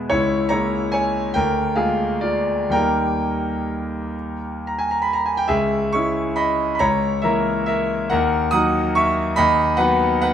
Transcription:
0.00 0.14 B2 medium
0.00 0.13 G#3 soft
0.00 0.13 B3 soft
0.00 0.13 G#4 medium
0.00 0.13 E5 medium
0.10 0.51 C#2 medium
0.10 0.49 E4 medium
0.10 0.49 C#5 medium
0.49 1.31 G#3 soft
0.49 1.31 A#3 soft
0.49 1.32 E4 soft
0.49 0.91 C#5 medium
0.49 0.93 A#5 medium
0.92 1.33 C#5 soft
0.92 1.34 G#5 medium
1.34 1.76 D2 medium
1.34 1.74 A#4 medium
1.34 1.76 G5 medium
1.76 2.70 G#3 soft
1.76 2.70 A#3 soft
1.76 2.21 F4 soft
1.76 2.20 G#4 soft
1.76 2.23 F5 medium
2.21 2.70 F4 soft
2.21 2.73 D5 medium
2.69 5.45 D#2 soft
2.69 5.45 G3 soft
2.69 5.46 A#3 soft
2.69 5.46 D#4 soft
2.69 4.66 A#4 medium
2.69 4.69 G5 medium
4.67 4.80 A#5 medium
4.79 4.92 G#5 medium
4.91 5.04 A#5 medium
5.02 5.15 B5 medium
5.13 5.27 A#5 medium
5.26 5.39 G#5 medium
5.37 5.50 G5 medium
5.48 5.92 C#2 medium
5.48 5.90 G#4 medium
5.48 5.92 E5 medium
5.93 6.77 G#3 soft
5.93 6.77 C#4 soft
5.93 6.78 E4 soft
5.93 6.34 E5 soft
5.93 6.37 C#6 medium
6.36 6.71 D#5 medium
6.36 6.73 B5 medium
6.75 6.82 B5 medium
6.79 7.23 C#2 medium
6.79 7.21 C#5 medium
6.79 7.23 A#5 medium
7.22 8.07 E3 soft
7.22 8.08 A#3 soft
7.22 8.08 E4 soft
7.22 7.65 A#4 medium
7.22 7.65 E5 medium
7.66 8.08 A#4 medium
7.66 8.10 E5 medium
8.10 8.52 D#2 medium
8.10 8.50 A#4 medium
8.10 8.51 F#5 medium
8.51 9.34 F#3 soft
8.51 9.34 A#3 soft
8.51 9.35 D#4 soft
8.51 8.93 F#5 medium
8.51 8.95 D#6 medium
8.95 9.35 E5 medium
8.95 9.38 C#6 medium
9.36 9.79 D#2 medium
9.36 9.77 D#5 medium
9.36 9.79 B5 medium
9.77 10.34 F#3 soft
9.77 10.34 B3 soft
9.77 10.34 D#4 medium
9.77 10.20 B4 medium
9.77 10.20 F#5 medium
10.21 10.34 B4 medium
10.21 10.34 F#5 medium

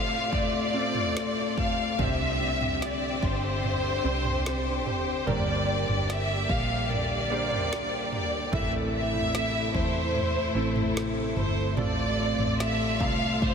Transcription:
0.00 1.99 A2 medium
0.00 2.01 A2 medium
0.00 1.95 C3 medium
0.00 0.31 A3 medium
0.00 1.96 A3 medium
0.00 2.01 A3 medium
0.00 0.24 C4 medium
0.00 1.15 C4 soft
0.00 0.24 F4 medium
0.00 0.72 F4 soft
0.00 1.96 F4 medium
0.00 0.24 A4 medium
0.00 1.56 A4 soft
0.00 0.24 C5 medium
0.00 0.30 F5 medium
0.31 1.99 A3 soft
0.31 1.58 D5 medium
0.31 kick medium
0.31 floor tom soft
0.73 1.93 C4 medium
0.73 2.07 F4 soft
0.73 1.93 F4 medium
0.73 1.93 A4 medium
0.73 1.93 C5 medium
0.95 floor tom medium
1.15 1.99 C4 soft
1.15 snare loud
1.57 2.07 A4 medium
1.57 1.97 F5 medium
1.57 kick medium
1.57 floor tom medium
1.99 3.19 C2 medium
1.99 3.19 C3 soft
1.99 5.24 D3 medium
1.99 3.19 G3 soft
1.99 3.55 C4 medium
1.99 5.26 C4 medium
1.99 5.24 C4 medium
1.99 3.55 D4 soft
1.99 3.56 G4 medium
1.99 8.49 G4 medium
1.99 3.56 C5 medium
1.99 2.82 E5 medium
1.99 kick medium
1.99 floor tom medium
2.41 3.63 D4 soft
2.61 floor tom medium
2.82 4.04 G4 soft
2.82 3.23 D5 medium
2.82 snare medium
3.23 4.00 G1 medium
3.23 4.85 C5 soft
3.23 4.86 C5 medium
3.23 kick medium
3.63 4.45 D4 medium
3.63 floor tom soft
4.03 4.86 C2 medium
4.03 5.21 C4 medium
4.03 5.21 D4 medium
4.03 5.21 G4 medium
4.03 6.08 G4 soft
4.03 5.21 C5 medium
4.25 floor tom medium
4.45 5.68 D4 medium
4.45 snare medium
4.86 5.24 F1 medium
4.86 5.35 C5 medium
4.86 5.25 C5 medium
4.86 floor tom medium
5.26 5.84 G1 medium
5.26 6.45 G2 medium
5.26 6.45 D3 soft
5.26 8.50 D3 medium
5.26 8.53 G3 medium
5.26 6.81 A#3 medium
5.26 8.50 A#3 medium
5.26 6.82 D4 medium
5.26 6.82 G4 medium
5.26 6.82 A#4 medium
5.26 6.09 D5 medium
5.26 floor tom loud
5.68 6.89 D4 medium
5.88 6.45 G1 medium
5.88 floor tom medium
6.08 7.29 G4 soft
6.08 6.50 E5 medium
6.08 snare medium
6.48 8.49 A#1 medium
6.48 8.11 A#4 medium
6.48 6.90 F5 medium
6.48 kick medium
6.90 7.70 D4 medium
6.90 8.11 D5 medium
6.90 floor tom medium
7.30 8.47 A#3 medium
7.30 8.47 D4 medium
7.30 8.61 G4 medium
7.30 8.47 G4 medium
7.30 8.47 C5 medium
7.51 floor tom medium
7.72 8.61 D4 medium
7.72 snare loud
8.12 8.61 A#4 medium
8.12 8.50 D5 medium
8.12 floor tom medium
8.52 9.71 A1 medium
8.52 11.75 A2 medium
8.52 9.70 A2 medium
8.52 13.54 C3 medium
8.52 9.70 E3 medium
8.52 10.06 A3 medium
8.52 11.74 A3 medium
8.52 10.06 C4 medium
8.52 10.07 E4 medium
8.52 11.74 E4 medium
8.52 10.07 A4 medium
8.52 8.71 E5 medium
8.52 kick medium
8.52 floor tom medium
8.93 10.95 C4 medium
8.93 9.71 E5 medium
9.14 floor tom medium
9.34 10.54 E4 medium
9.34 snare medium
9.74 10.51 E2 medium
9.74 11.35 A4 medium
9.74 10.96 C5 medium
9.74 kick medium
10.14 13.40 A3 medium
10.14 floor tom medium
10.55 11.32 A1 medium
10.55 11.71 A3 medium
10.55 11.71 C4 medium
10.55 11.85 E4 medium
10.55 11.71 E4 medium
10.55 11.72 A4 medium
10.76 floor tom medium
10.96 12.17 C4 medium
10.96 snare medium
11.36 11.74 G1 medium
11.36 12.99 A4 medium
11.36 11.75 C5 medium
11.36 floor tom medium
11.77 12.34 A1 medium
11.77 13.54 A2 medium
11.77 12.96 A2 medium
11.77 13.54 A3 medium
11.77 13.33 A3 medium
11.77 13.33 C4 medium
11.77 13.54 F4 medium
11.77 13.34 F4 medium
11.77 13.34 A4 medium
11.77 12.55 D5 medium
11.77 floor tom medium
12.18 13.54 C4 soft
12.38 13.00 A1 medium
12.38 floor tom medium
12.58 13.54 F4 soft
12.58 13.01 E5 medium
12.58 snare medium
12.99 13.54 C2 medium
12.99 13.54 A4 soft
12.99 13.42 F5 medium
12.99 kick medium
13.41 13.54 A3 medium
13.41 13.54 C5 medium
13.41 kick medium
13.41 floor tom medium

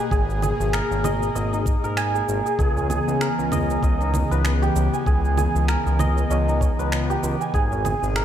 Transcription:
0.00 2.55 B2 medium
0.00 2.55 A#3 medium
0.00 1.53 D#4 medium
0.00 2.55 G#4 medium
0.00 0.80 B4 loud
0.00 1.04 D#5 medium
0.00 1.97 G#5 medium
0.11 0.52 G#1 loud
0.11 0.42 G#4 loud
0.11 kick loud
0.11 cabasa soft
0.30 cabasa soft
0.42 2.14 G#4 loud
0.42 low conga medium
0.42 cabasa medium
0.60 0.81 G#1 loud
0.60 cabasa soft
0.73 1.83 A#4 loud
0.73 finger snap loud
0.73 cabasa soft
0.91 1.29 G#1 medium
0.91 cabasa soft
1.04 1.35 D#5 loud
1.04 low conga medium
1.04 cabasa medium
1.23 cabasa soft
1.35 1.76 G#1 loud
1.35 3.51 D#5 loud
1.35 cabasa medium
1.53 4.00 D#4 medium
1.53 cabasa soft
1.66 kick loud
1.66 cabasa medium
1.84 2.22 G#1 medium
1.84 3.21 A#4 loud
1.84 cabasa soft
1.97 3.97 G#5 loud
1.97 finger snap loud
1.97 cabasa medium
2.15 2.45 G#4 medium
2.15 cabasa soft
2.28 2.41 G#1 loud
2.28 cabasa medium
2.46 2.59 G#4 medium
2.46 cabasa soft
2.59 2.99 C#2 loud
2.59 7.50 C#3 medium
2.59 7.50 E3 medium
2.59 7.50 B3 medium
2.59 2.89 G#4 loud
2.59 kick loud
2.59 cabasa soft
2.77 tabla na medium
2.77 tabla ge medium
2.77 cabasa soft
2.90 4.68 G#4 loud
2.90 low conga medium
2.90 cabasa medium
3.08 3.29 C#2 loud
3.08 cabasa soft
3.21 4.37 A#4 loud
3.21 finger snap medium
3.21 cabasa soft
3.39 3.77 C#2 medium
3.39 cabasa soft
3.52 3.82 D#5 loud
3.52 low conga medium
3.52 tabla ge medium
3.52 cabasa medium
3.69 tabla tin soft
3.69 cabasa soft
3.83 4.23 C#2 loud
3.83 5.99 D#5 loud
3.83 kick loud
3.83 cabasa soft
4.01 6.48 D#4 medium
4.01 tabla na soft
4.01 cabasa soft
4.14 tabla tin soft
4.14 low conga medium
4.14 cabasa medium
4.31 4.69 C#2 medium
4.31 5.74 B4 loud
4.31 cabasa soft
4.45 finger snap loud
4.45 cabasa soft
4.62 4.99 G4 loud
4.62 cabasa soft
4.76 4.88 C#2 loud
4.76 cabasa medium
4.93 6.93 G#5 medium
4.93 cabasa soft
5.06 5.47 C#2 loud
5.06 5.37 G#4 loud
5.06 kick loud
5.06 cabasa soft
5.25 cabasa soft
5.37 7.16 G#4 loud
5.37 low conga medium
5.37 cabasa medium
5.55 5.76 C#2 loud
5.55 cabasa soft
5.68 6.85 A#4 loud
5.68 finger snap medium
5.68 cabasa soft
5.86 6.24 C#2 medium
5.86 cabasa soft
5.99 6.30 D#5 loud
5.99 low conga medium
5.99 cabasa medium
6.16 tabla tin medium
6.16 cabasa soft
6.30 6.71 C#2 medium
6.30 8.25 D#5 loud
6.30 tabla na medium
6.30 cabasa soft
6.48 8.25 D#4 medium
6.48 cabasa soft
6.61 kick loud
6.61 tabla na medium
6.61 cabasa medium
6.79 7.17 C#2 medium
6.79 8.22 B4 loud
6.79 tabla na medium
6.79 cabasa soft
6.92 finger snap loud
6.92 cabasa soft
7.10 7.47 G4 loud
7.10 cabasa soft
7.23 7.36 C#2 loud
7.23 tabla tin soft
7.23 cabasa medium
7.41 8.25 G#5 medium
7.41 cabasa soft
7.53 7.94 G#1 loud
7.53 8.25 B2 medium
7.53 8.25 G#4 medium
7.53 7.84 G#4 loud
7.53 kick loud
7.53 cabasa soft
7.71 tabla na medium
7.71 tabla ge medium
7.71 cabasa soft
7.85 8.25 G#4 loud
7.85 low conga medium
7.85 cabasa medium
8.02 8.23 G#1 loud
8.02 cabasa soft
8.16 8.25 A#4 loud
8.16 finger snap medium
8.16 cabasa soft

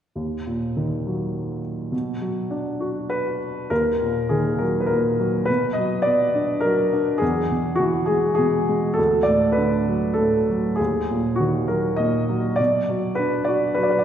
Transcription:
0.15 1.89 D#2 soft
0.46 1.61 A#2 soft
0.76 1.89 D#3 soft
1.07 1.90 F#3 soft
1.92 3.66 B2 soft
2.21 3.37 F#3 soft
2.51 3.67 D4 soft
2.80 3.68 F#4 soft
3.10 3.72 B4 medium
3.70 5.45 D#2 soft
3.70 4.33 A#4 medium
4.01 4.89 A#2 soft
4.29 5.45 D#3 soft
4.29 4.61 G#4 soft
4.58 5.18 F#3 soft
4.58 4.83 A#4 soft
4.80 4.89 B4 soft
4.86 5.49 A#4 soft
4.91 5.47 A#2 soft
5.20 5.48 F#3 soft
5.45 5.77 B4 medium
5.50 7.18 B2 soft
5.73 6.05 D#5 medium
5.78 6.63 F#3 soft
6.02 6.64 D5 medium
6.07 7.18 B3 soft
6.35 6.92 D4 soft
6.60 7.20 F#3 soft
6.60 7.22 A#4 medium
6.93 7.21 D4 soft
7.18 8.94 E2 soft
7.18 7.81 G#4 medium
7.51 8.37 B2 soft
7.76 8.09 F#4 medium
7.80 8.94 E3 soft
8.06 8.67 G#3 soft
8.06 8.33 G#4 medium
8.35 8.96 B2 soft
8.35 8.98 G#4 medium
8.69 8.97 G#3 soft
8.94 9.26 A4 medium
8.98 10.75 D2 soft
9.23 9.56 D5 medium
9.28 10.17 A2 soft
9.52 10.18 B4 medium
9.58 10.76 D3 soft
9.88 10.48 F#3 soft
10.14 10.79 A4 medium
10.19 10.78 A2 soft
10.50 10.79 F#3 soft
10.76 11.40 G#4 medium
10.80 12.55 D#2 soft
11.10 11.97 A#2 soft
11.36 11.65 F#4 soft
11.40 12.56 D#3 soft
11.68 12.28 F#3 soft
11.68 12.00 A#4 soft
11.96 12.57 A#2 soft
11.96 12.59 D#5 medium
12.29 12.58 F#3 soft
12.56 13.18 D5 medium
12.60 14.04 B2 soft
12.89 13.76 F#3 soft
13.15 14.04 D4 soft
13.15 13.47 B4 medium
13.44 14.04 F#4 soft
13.44 13.77 D5 medium
13.74 14.04 F#3 soft
13.74 13.84 B4 medium
13.83 13.92 D5 soft
13.90 14.00 B4 soft
13.99 14.04 D5 soft

